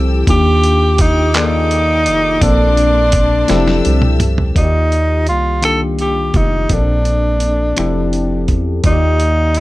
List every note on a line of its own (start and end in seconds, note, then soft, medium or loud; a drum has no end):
0.00 0.24 C2 loud
0.00 0.21 F3 medium
0.00 0.21 C4 medium
0.00 0.21 E4 medium
0.00 0.22 G4 medium
0.00 2.38 G4 medium
0.00 0.22 A4 medium
0.00 2.38 G5 medium
0.00 0.26 A5 medium
0.00 0.26 E6 medium
0.26 2.09 D#2 loud
0.26 1.28 D#3 medium
0.26 1.28 A#3 medium
0.26 1.28 D4 medium
0.26 1.29 F4 medium
0.26 1.29 G4 medium
0.26 3.45 D6 medium
0.26 kick loud
0.26 closed hi-hat medium
0.30 1.03 G4 loud
0.64 closed hi-hat medium
0.98 1.36 D#4 medium
0.98 kick medium
0.98 closed hi-hat medium
1.34 2.35 D#3 medium
1.34 2.35 A#3 medium
1.34 2.44 D#4 medium
1.34 2.36 F4 medium
1.34 1.42 G#4 medium
1.34 2.36 D5 medium
1.34 clap loud
1.34 closed hi-hat medium
1.43 2.40 A4 medium
1.71 closed hi-hat soft
2.06 2.39 F1 medium
2.06 closed hi-hat medium
2.40 3.45 A#1 loud
2.40 3.42 A#2 medium
2.40 3.47 A#3 medium
2.40 3.42 A#3 medium
2.40 3.43 C4 medium
2.40 4.21 D4 medium
2.40 3.43 D4 medium
2.40 3.43 A4 medium
2.40 4.53 A5 medium
2.40 3.47 C6 medium
2.40 kick loud
2.40 closed hi-hat medium
2.77 closed hi-hat medium
3.12 kick medium
3.12 closed hi-hat medium
3.48 3.82 F1 loud
3.48 4.49 F3 medium
3.48 4.50 C4 medium
3.48 4.50 E4 medium
3.48 4.54 G4 medium
3.48 4.51 G4 medium
3.48 4.51 A4 medium
3.48 4.54 E5 medium
3.48 4.54 E6 medium
3.48 snare medium
3.48 closed hi-hat medium
3.68 snare medium
3.85 4.53 C2 medium
3.85 closed hi-hat soft
4.02 mid tom medium
4.20 closed hi-hat medium
4.20 mid tom medium
4.38 floor tom medium
4.55 5.31 D#2 medium
4.55 5.56 D#3 medium
4.55 5.57 A#3 medium
4.55 5.24 D#4 medium
4.55 5.57 F4 medium
4.55 4.63 F#4 medium
4.55 5.57 D5 medium
4.55 kick medium
4.55 closed hi-hat medium
4.64 5.61 G4 medium
4.92 closed hi-hat soft
5.27 6.31 C2 medium
5.27 5.61 F4 medium
5.27 closed hi-hat soft
5.61 6.63 D#3 medium
5.61 6.64 A#3 soft
5.61 6.64 D4 medium
5.61 6.64 F4 medium
5.61 6.65 G4 medium
5.61 5.80 A4 medium
5.61 finger snap medium
5.61 closed hi-hat medium
5.99 6.38 G4 medium
5.99 closed hi-hat soft
6.34 6.67 F1 medium
6.34 6.74 D#4 medium
6.34 kick medium
6.34 closed hi-hat soft
6.69 7.74 A#1 medium
6.69 7.71 A#2 medium
6.69 7.71 A#3 medium
6.69 7.71 C4 medium
6.69 7.72 D4 medium
6.69 8.50 D4 medium
6.69 7.72 A4 medium
6.69 kick medium
6.69 closed hi-hat medium
7.05 closed hi-hat soft
7.40 closed hi-hat soft
7.77 8.51 F1 loud
7.77 8.78 F3 medium
7.77 8.78 C4 medium
7.77 8.79 E4 medium
7.77 8.79 G4 medium
7.77 8.79 A4 medium
7.77 finger snap loud
7.77 closed hi-hat medium
8.13 closed hi-hat soft
8.48 8.81 E2 medium
8.48 kick medium
8.48 closed hi-hat soft
8.83 9.59 D#2 loud
8.83 9.60 D#3 medium
8.83 9.60 A#3 medium
8.83 9.60 D#4 medium
8.83 9.60 F4 medium
8.83 8.92 F#4 medium
8.83 9.60 D5 medium
8.83 kick loud
8.83 closed hi-hat medium
8.93 9.60 G4 medium
9.20 closed hi-hat soft
9.55 closed hi-hat soft